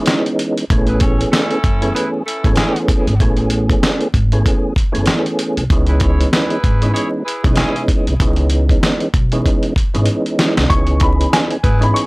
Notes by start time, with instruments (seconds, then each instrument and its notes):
Already playing: tonewheel organ E3 G#3 B3 C#4 D#4
0.06 snare, closed hi-hat
0.26 closed hi-hat
0.39 closed hi-hat
0.57 closed hi-hat
0.70 upright bass A1, tonewheel organ E3 A3 B3 C#4 G#4, kick, closed hi-hat
0.87 saxophone section E4 G#4 B4, closed hi-hat
1.00 saxophone section C#4 A4 C#5, kick, closed hi-hat
1.21 closed hi-hat
1.32 saxophone section C#4 E4 A4, snare, closed hi-hat
1.51 closed hi-hat
1.64 upright bass F#1, kick, closed hi-hat
1.81 tonewheel organ E3 A3 B3 C#4 G#4, closed hi-hat
1.95 saxophone section E4 G#4 B4, closed hi-hat
2.27 saxophone section C#4 E4 A4, closed hi-hat
2.43 upright bass G#1, tonewheel organ E3 A3 B3 C#4 G#4, kick, closed hi-hat
2.56 saxophone section C#4 E4 G#4, snare, closed hi-hat
2.76 closed hi-hat
2.88 kick, closed hi-hat
3.07 upright bass G#1, closed hi-hat
3.20 upright bass A1, tonewheel organ E3 A3 B3 C#4 G#4, kick, closed hi-hat
3.37 closed hi-hat
3.50 closed hi-hat
3.69 kick, closed hi-hat
3.83 snare, closed hi-hat
4.01 closed hi-hat
4.14 upright bass G#1, kick, closed hi-hat
4.32 tonewheel organ E3 A3 B3 C#4 G#4, closed hi-hat
4.46 kick, closed hi-hat
4.76 kick, closed hi-hat
4.92 upright bass F#1, tonewheel organ E3 A3 B3 C#4 G#4, closed hi-hat
5.06 snare, closed hi-hat
5.26 closed hi-hat
5.39 closed hi-hat
5.57 upright bass C2, closed hi-hat
5.70 upright bass C#2, tonewheel organ E3 G#3 B3 C#4 D#4, kick, closed hi-hat
5.87 saxophone section E4 G#4 B4, closed hi-hat
6.00 saxophone section E4 G#4 C#5, kick, closed hi-hat
6.21 closed hi-hat
6.33 saxophone section E4 G#4 B4, snare, closed hi-hat
6.50 closed hi-hat
6.64 upright bass G#1, kick, closed hi-hat
6.82 tonewheel organ E3 G#3 B3 C#4 D#4, closed hi-hat
6.94 saxophone section E4 G#4 C#5, closed hi-hat
7.25 saxophone section E4 G#4 B4, closed hi-hat
7.43 upright bass B1, tonewheel organ E3 G#3 B3 C#4 D#4, kick, closed hi-hat
7.56 saxophone section C#4 E4 G#4, snare, closed hi-hat
7.76 closed hi-hat
7.88 kick, closed hi-hat
8.07 upright bass C2, closed hi-hat
8.20 upright bass C#2, tonewheel organ E3 G#3 B3 C#4 D#4, kick, closed hi-hat
8.36 closed hi-hat
8.50 closed hi-hat
8.69 kick, closed hi-hat
8.83 snare, closed hi-hat
9.00 closed hi-hat
9.14 upright bass B1, kick, closed hi-hat
9.32 tonewheel organ E3 G#3 B3 C#4 D#4, closed hi-hat
9.46 kick, closed hi-hat
9.63 closed hi-hat
9.76 kick, closed hi-hat
9.94 upright bass G#1, tonewheel organ E3 G#3 B3 C#4 D#4, closed hi-hat
10.06 closed hi-hat
10.26 closed hi-hat
10.39 snare, closed hi-hat
10.57 upright bass C2, snare, closed hi-hat
10.70 upright bass C#2, tonewheel organ E3 B3 C#4 D#4 G#4, upright piano C#6, kick, closed hi-hat
10.87 closed hi-hat
11.00 upright piano B5, kick, closed hi-hat
11.21 closed hi-hat
11.33 upright piano G#5, snare, closed hi-hat
11.51 closed hi-hat
11.64 upright bass G#1, saxophone section E4 G#4 B4, kick, closed hi-hat
11.80 tonewheel organ E3 B3 C#4 D#4 G#4, upright piano B5, closed hi-hat
11.94 upright piano C#6, closed hi-hat